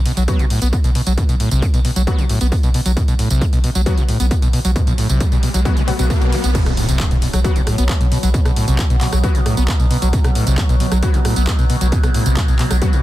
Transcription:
0.06 B2, open hi-hat
0.17 B1 F#3, closed hi-hat, tambourine
0.28 F#3 B3 F#4, kick, closed hi-hat, tambourine
0.39 B1 B2, closed hi-hat, tambourine
0.50 A2, open hi-hat
0.62 B1 B3, closed hi-hat, tambourine
0.73 B3, kick, closed hi-hat, tambourine
0.84 B1 B2, closed hi-hat, tambourine
0.95 B2, open hi-hat
1.07 B1 F#3, closed hi-hat, tambourine
1.18 B2, kick, closed hi-hat, tambourine
1.29 B1 B2, closed hi-hat, tambourine
1.40 A2, open hi-hat
1.51 B1 C3, closed hi-hat, tambourine
1.62 B3, kick, closed hi-hat, tambourine
1.74 B1 B2, closed hi-hat, tambourine
1.85 B2, open hi-hat
1.96 B1 F#3, closed hi-hat, tambourine
2.07 F#3 B3 F#4, kick, closed hi-hat, tambourine
2.19 B1 B2, closed hi-hat, tambourine
2.29 A2, open hi-hat
2.41 B1 B3, closed hi-hat, tambourine
2.52 B3, kick, open hi-hat, tambourine
2.63 B1 B2, closed hi-hat, tambourine
2.74 B2, open hi-hat
2.86 B1 F#3, closed hi-hat, tambourine
2.97 B2, kick, closed hi-hat, tambourine, riser
3.08 B1 B2, closed hi-hat, tambourine
3.19 A2, open hi-hat
3.30 B1 C3, closed hi-hat, tambourine
3.41 B3, kick, closed hi-hat, tambourine
3.53 B1 B2, closed hi-hat, tambourine
3.64 B2, open hi-hat
3.75 B1 F#3, closed hi-hat, tambourine
3.86 F#3 B3 F#4, kick, closed hi-hat, tambourine
3.98 B1 B2, closed hi-hat, tambourine
4.08 A2, open hi-hat
4.20 B1 B3, closed hi-hat, tambourine
4.31 B3, kick, closed hi-hat, tambourine
4.42 B1 B2, closed hi-hat, tambourine
4.53 B2, open hi-hat
4.65 B1 F#3, closed hi-hat, tambourine
4.76 B2, kick, closed hi-hat, tambourine
4.87 B1 B2, closed hi-hat, tambourine
4.98 A2, open hi-hat
5.09 B1 C3, closed hi-hat, tambourine
5.21 B3, kick, closed hi-hat, tambourine
5.32 B1 B2, closed hi-hat, tambourine
5.43 B2, open hi-hat
5.54 B1 F#3, closed hi-hat, tambourine
5.65 F#3 B3 F#4, kick, closed hi-hat, tambourine
5.77 B1 B2, closed hi-hat, tambourine
5.88 B2 F#3 B3 F#4, open hi-hat
5.99 B1 B2 F#3 B3 F#4, closed hi-hat, tambourine
6.10 B2, kick, open hi-hat, tambourine
6.21 B1 B2, closed hi-hat, tambourine
6.32 E3, open hi-hat
6.44 B1 B3, closed hi-hat, tambourine
6.55 B2 F#3, kick, closed hi-hat, tambourine, crash, impact
6.66 B1 B2, cross-stick, closed hi-hat, tambourine
6.77 A2, open hi-hat
6.89 B1 C3, closed hi-hat, tambourine
7.00 B3, kick, clap, closed hi-hat, tambourine
7.11 B1 B2, closed hi-hat, tambourine
7.22 B2, open hi-hat
7.33 B1 F#3, cross-stick, closed hi-hat, tambourine
7.44 F#3 B3 F#4, kick, closed hi-hat, tambourine
7.56 B1 B2, closed hi-hat, tambourine
7.67 A2, cross-stick, open hi-hat
7.78 B1 B3, closed hi-hat, tambourine
7.89 B3, kick, clap, closed hi-hat, tambourine
8.01 B1 B2, closed hi-hat, tambourine
8.12 B2, open hi-hat
8.23 B1 F#3, closed hi-hat, tambourine
8.34 B2, kick, closed hi-hat, tambourine
8.45 B1 B2, cross-stick, closed hi-hat, tambourine
8.56 A2, open hi-hat
8.68 B1 C3, closed hi-hat, tambourine
8.79 B3, kick, clap, closed hi-hat, tambourine
8.90 B1 B2, closed hi-hat, tambourine
9.01 B2, clap, open hi-hat
9.12 B1 F#3, cross-stick, closed hi-hat, tambourine
9.24 F#3 B3 F#4, kick, closed hi-hat, tambourine
9.35 B1 B2, closed hi-hat, tambourine
9.46 A2, cross-stick, open hi-hat
9.57 B1 B3, closed hi-hat, tambourine
9.68 B3, kick, clap, closed hi-hat, tambourine
9.80 B1 B2, closed hi-hat, tambourine
9.91 B2, open hi-hat
10.02 B1 F#3, closed hi-hat, tambourine
10.13 B2, kick, closed hi-hat, tambourine
10.24 B1 B2, cross-stick, closed hi-hat, tambourine
10.35 A2, open hi-hat
10.47 B1 C3, closed hi-hat, tambourine
10.58 B3, kick, clap, closed hi-hat, tambourine
10.69 B1 B2, closed hi-hat, tambourine
10.80 B2, open hi-hat
10.92 B1 F#3, cross-stick, closed hi-hat, tambourine
11.03 F#3 B3 F#4, kick, closed hi-hat, tambourine
11.14 B1 B2, closed hi-hat, tambourine
11.25 A2, cross-stick, open hi-hat
11.36 B1 B3, closed hi-hat, tambourine
11.47 B3, kick, clap, closed hi-hat, tambourine
11.59 B1 B2, closed hi-hat, tambourine
11.70 B2, open hi-hat
11.81 B1 F#3, closed hi-hat, tambourine
11.92 B2, kick, closed hi-hat, tambourine
12.03 B1 B2, cross-stick, closed hi-hat, tambourine
12.14 A2, open hi-hat
12.26 B1 C3, closed hi-hat, tambourine
12.37 B3, kick, clap, closed hi-hat, tambourine
12.48 B1 B2, closed hi-hat, tambourine
12.59 B2, clap, open hi-hat
12.71 B1 F#3, cross-stick, closed hi-hat, tambourine
12.82 F#3 B3 F#4, kick, closed hi-hat, tambourine
12.93 B1 B2, closed hi-hat, tambourine

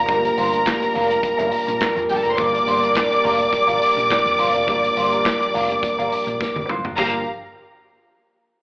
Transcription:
Already playing: G3 D4 F4 A#4 A#5
0.07 G1 F3 G3 A3 D4 F4 G4 A#4, kick, closed hi-hat
0.15 A#3
0.23 muted clean electric guitar stroke, closed hi-hat
0.37 G1 D4 F4 C5, open hi-hat
0.52 D4 F4 A#4, closed hi-hat
0.66 kick, snare, clap, closed hi-hat
0.80 muted clean electric guitar stroke, closed hi-hat
0.94 F1 D4 F4 A#4, open hi-hat
1.10 muted clean electric guitar stroke, closed hi-hat
1.23 muted clean electric guitar stroke, kick, closed hi-hat
1.38 G1 D4 F4 A#4, closed hi-hat
1.52 muted clean electric guitar stroke, open hi-hat
1.67 A#1, muted clean electric guitar stroke, closed hi-hat
1.81 muted clean electric guitar stroke, kick, snare, clap, closed hi-hat
1.96 F2, muted clean electric guitar stroke, closed hi-hat
2.09 G1 G4 G5, open hi-hat
2.16 A4 A5
2.24 F1 A#4 A#5, muted clean electric guitar stroke, closed hi-hat
2.31 C5 C6
2.37 G1 F3 G3 A#3 D4 F4 G4 A#4 D5 D6, kick, closed hi-hat
2.53 muted clean electric guitar stroke, closed hi-hat
2.67 G1 D4 F4 C5, open hi-hat
2.82 D4 F4 A#4, closed hi-hat
2.95 kick, snare, clap, closed hi-hat
3.11 muted clean electric guitar stroke, closed hi-hat
3.24 F1 D4 F4 A#4, open hi-hat
3.39 muted clean electric guitar stroke, closed hi-hat
3.53 muted clean electric guitar stroke, kick, closed hi-hat
3.67 G1 D4 F4 A#4, closed hi-hat
3.82 open hi-hat
3.97 A#1, muted clean electric guitar stroke, closed hi-hat
4.10 muted clean electric guitar stroke, kick, snare, clap, closed hi-hat
4.25 F2, muted clean electric guitar stroke, closed hi-hat
4.39 G1 D4 F4 C5, open hi-hat
4.54 F1 D4 A#4, closed hi-hat
4.66 G1 F3 G3 A#3 D4 F4 G4 A#4, kick, closed hi-hat
4.83 muted clean electric guitar stroke, closed hi-hat
4.96 G1 D4 F4 C5, open hi-hat
5.12 D4 F4 A#4, closed hi-hat
5.25 kick, snare, clap, closed hi-hat
5.41 muted clean electric guitar stroke, closed hi-hat
5.54 F1 D4 F4 A#4, open hi-hat
5.69 muted clean electric guitar stroke, closed hi-hat
5.83 muted clean electric guitar stroke, kick, closed hi-hat
5.98 G1 D4 F4 A#4, closed hi-hat
6.12 muted clean electric guitar stroke, open hi-hat
6.27 A#1, muted clean electric guitar stroke, closed hi-hat
6.40 muted clean electric guitar stroke, kick, snare
6.56 F1, muted clean electric guitar stroke, high tom
6.69 G1 D4 F4 C5, mid tom
6.85 F1 D4 F4 A#4, floor tom
6.97 G1 F3 G3 A#3 D4 F4 G4 A#4 F5 A#5, kick, crash

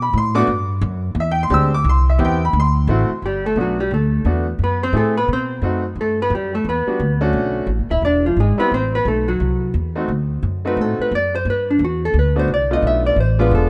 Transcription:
Already playing: B2
0.02 B5
0.13 A2
0.18 C6
0.35 A3 B3 D4 F#4 D6
0.47 G2
0.81 F#2
1.15 E2
1.20 E5
1.31 G5
1.43 C6
1.50 D2 G#3 C4 D4 G4 E6
1.74 D6
1.84 C2
1.89 C6
2.10 E5
2.18 E2 B3 C4 E4 G4
2.25 G5
2.45 B5
2.53 D2
2.60 C6
2.87 A1 A3 C4 E4 F#4
3.09 muted upright bass stroke
3.22 G1 G3 G4
3.46 A3 A4
3.56 B1 A3 B3 D4 F#4
3.60 F#3 F#4
3.80 G3 G4
3.91 D2 A3 A4
4.25 E2 A3 B3 D4 F#4
4.59 F#2
4.63 B3 B4
4.83 C4 C5
4.93 A2 A3 C4 E4 G#4
4.97 A3 A4
5.17 B3 B4
5.28 B2
5.33 C4 C5
5.62 F#2 A3 C4 D#4 F#4
5.95 G2
6.01 A3 A4
6.22 B3 B4
6.30 F#2
6.35 G3 G4
6.55 A3 A4
6.65 E2
6.69 B3 B4
6.87 G3 B3 D4 F#4, muted upright bass stroke
7.00 D2
7.21 A3 C#4 D4 F#4
7.33 B1
7.67 A1
7.79 F#1
7.91 D1 E4 E5
8.02 E1 D4 D5
8.26 F3 F4
8.37 G#1 G#3 G#4
8.58 G3 B3 C4 E4 B4
8.71 A1 C4 C5
8.95 B3 B4
9.05 B1 A3 A4
9.28 F#3 F#4
9.40 C2
9.74 E2
9.96 A3 C4 D#4 F#4
10.08 D2
10.43 F#2
10.65 A3 C4 D#4 F#4 B4
10.77 A2
10.81 A4
10.99 B4, muted upright bass stroke
11.11 F#2 D5
11.35 C5
11.45 G2
11.50 B4
11.70 D4
11.79 E2
11.85 F#4
12.05 A4
12.14 D2
12.19 B4
12.36 A3 B3 D4 F#4 C5
12.48 C2
12.54 D5
12.71 A3 B3 D4 F4 D#5
12.82 B1
12.87 E5
13.06 D5
13.16 A1
13.20 C5
13.39 G#3 B3 D4 F4 B4
13.51 E1 A4

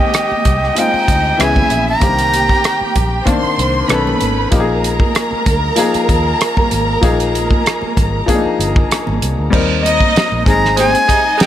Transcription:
Already playing: D#3 G#3 C4 G4 D#5 G5
0.00 high conga
0.14 cross-stick, closed hi-hat, muted conga
0.31 muted fingered electric bass stroke, muted conga, high conga
0.45 C2, kick, closed hi-hat, low conga
0.64 cross-stick
0.75 G#3 C4 D#4 F4 D#5, closed hi-hat, muted conga, high conga
0.79 G5
0.94 muted fingered electric bass stroke, muted conga
1.08 D2, kick, closed hi-hat
1.38 C#2 E3 B3 C#4 E4 G#4 E5, cross-stick, closed hi-hat
1.42 G#5
1.56 kick, high conga, low conga
1.70 A#1, closed hi-hat, high conga
1.89 A#5
2.00 C2 D3 A#3 C4 G4 G5, kick, closed hi-hat, muted conga, low conga
2.06 D#3
2.19 closed hi-hat
2.33 closed hi-hat, high conga
2.49 kick, high conga
2.64 cross-stick, closed hi-hat, muted conga
2.81 muted fingered electric bass stroke, high conga
2.95 A#1, kick, closed hi-hat, low conga
3.25 D#3 A#3 C4 D4 C5 C6, kick, closed hi-hat, high conga
3.44 muted fingered electric bass stroke, muted conga
3.58 C2, closed hi-hat
3.88 B1 D#3 B3 C#4 A4 B4 B5, cross-stick, closed hi-hat
4.07 muted conga, high conga, low conga
4.21 G#1, closed hi-hat, high conga
4.51 A#1 F3 A#3 D#4 G4 A#4 A#5, kick, closed hi-hat, low conga
4.60 G#4
4.84 closed hi-hat, high conga
5.00 kick, high conga
5.15 cross-stick, closed hi-hat
5.31 muted fingered electric bass stroke, high conga
5.46 D2, kick, closed hi-hat, low conga
5.76 F3 A#3 D#4 G#4, closed hi-hat, muted conga, high conga
5.94 muted fingered electric bass stroke, closed hi-hat
6.09 D#2, kick, closed hi-hat
6.41 cross-stick, closed hi-hat
6.57 kick, muted conga, high conga, low conga
6.71 G#1, closed hi-hat, high conga
7.01 A#1 F3 A#3 D#4 G#4, kick, closed hi-hat, muted conga, low conga
7.20 closed hi-hat
7.34 closed hi-hat, high conga
7.51 kick, high conga
7.66 cross-stick, closed hi-hat
7.82 muted fingered electric bass stroke, high conga
7.97 G#1, kick, closed hi-hat, low conga
8.26 F3 A#3 D4 G#4, kick, closed hi-hat, muted conga, high conga
8.35 D#4
8.46 muted fingered electric bass stroke, muted conga
8.59 G1, closed hi-hat
8.76 kick
8.91 cross-stick, closed hi-hat, muted conga
9.07 G#1, muted conga, high conga, low conga
9.22 C2, closed hi-hat, high conga
9.39 D2
9.50 D#2 G3 C4 D#4 A#4, kick, crash, muted conga, low conga
9.83 D#4 D#5, closed hi-hat, high conga
10.01 kick, high conga
10.16 muted fingered electric bass stroke, snare, closed hi-hat, muted conga
10.32 A#1, muted conga, high conga
10.45 G#1 G#3 C4 D#4 G#4 A#5, kick, closed hi-hat, low conga
10.65 snare
10.75 C3 G#3 C4 D#4 C5 G#5, closed hi-hat, muted conga, high conga
10.95 closed hi-hat, muted conga
11.07 C3 G#3 D#4 D#5, kick, closed hi-hat
11.38 C3 G#3 D#4, snare, closed hi-hat, muted conga
11.42 G5

